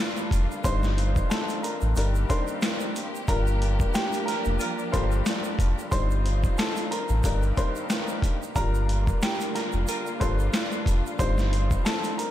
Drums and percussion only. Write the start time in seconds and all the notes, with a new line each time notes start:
0.17 shaker
0.31 kick, closed hi-hat, shaker
0.51 shaker
0.64 kick, closed hi-hat, shaker
0.83 snare, shaker
0.98 closed hi-hat
1.16 kick, shaker
1.31 snare, closed hi-hat, shaker
1.49 closed hi-hat, shaker
1.64 closed hi-hat, shaker
1.81 shaker
1.96 closed hi-hat, shaker
2.15 shaker
2.30 kick, closed hi-hat, shaker
2.48 shaker
2.62 snare, closed hi-hat, shaker
2.80 shaker
2.96 closed hi-hat, shaker
3.15 shaker
3.28 kick, closed hi-hat, shaker
3.47 shaker
3.62 closed hi-hat
3.80 kick, shaker
3.94 snare, closed hi-hat, shaker
4.13 closed hi-hat, shaker
4.28 snare, closed hi-hat, shaker
4.45 shaker
4.59 closed hi-hat, shaker
4.79 shaker
4.94 kick, closed hi-hat, shaker
5.11 shaker
5.26 snare, closed hi-hat, shaker
5.44 shaker
5.59 kick, closed hi-hat, shaker
5.79 shaker
5.92 kick, closed hi-hat, shaker
6.11 shaker
6.26 closed hi-hat
6.44 kick, shaker
6.58 snare, closed hi-hat, shaker
6.76 closed hi-hat, shaker
6.92 closed hi-hat, shaker
7.09 shaker
7.23 kick, closed hi-hat, shaker
7.43 shaker
7.57 kick, closed hi-hat, shaker
7.76 shaker
7.90 snare, closed hi-hat, shaker
8.08 shaker
8.22 kick, closed hi-hat, shaker
8.43 shaker
8.56 kick, closed hi-hat, shaker
8.75 shaker
8.89 closed hi-hat
9.07 kick, shaker
9.22 snare, closed hi-hat, shaker
9.40 closed hi-hat, shaker
9.55 snare, closed hi-hat, shaker
9.72 shaker
9.87 closed hi-hat, shaker
10.06 shaker
10.21 kick, closed hi-hat, shaker
10.39 shaker
10.53 snare, closed hi-hat, shaker
10.72 shaker
10.86 kick, closed hi-hat, shaker
11.06 shaker
11.19 kick, closed hi-hat, shaker
11.38 snare, shaker
11.53 closed hi-hat
11.71 kick, shaker
11.86 snare, closed hi-hat, shaker
12.04 closed hi-hat, shaker
12.19 closed hi-hat, shaker